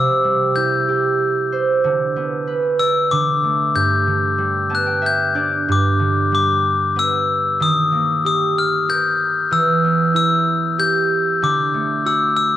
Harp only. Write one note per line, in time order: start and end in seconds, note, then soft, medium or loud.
0.00 1.89 C3 medium
0.00 0.33 A3 soft
0.00 1.31 C4 soft
0.00 0.13 D4 medium
0.00 0.82 A4 soft
0.00 0.92 C5 soft
0.00 0.63 F5 soft
0.24 1.89 G3 soft
0.57 3.18 E4 soft
0.88 3.24 G4 medium
1.52 2.22 C5 medium
1.84 3.11 D3 medium
2.16 4.69 B3 soft
2.47 4.52 B4 soft
2.79 4.64 D5 medium
3.12 3.79 D3 medium
3.43 6.76 A3 soft
3.75 5.67 G2 medium
4.07 5.73 D3 soft
4.38 5.73 G3 medium
4.70 6.95 B3 medium
4.70 6.15 A5 medium
4.86 6.41 G5 medium
5.02 6.74 E5 medium
5.35 7.66 D4 soft
5.35 7.20 D5 medium
5.69 7.66 G2 medium
5.99 7.66 D3 medium
6.32 7.66 G3 soft
6.96 7.98 B3 medium
7.60 9.57 D#3 medium
7.92 9.90 A#3 soft
8.25 10.60 G4 soft
8.89 9.90 A#4 medium
9.51 11.47 E3 medium
9.84 12.57 B3 medium
10.14 12.57 E4 medium
10.78 12.12 G4 medium
11.42 12.57 D3 medium
11.74 12.57 A3 soft
12.06 12.57 F#4 medium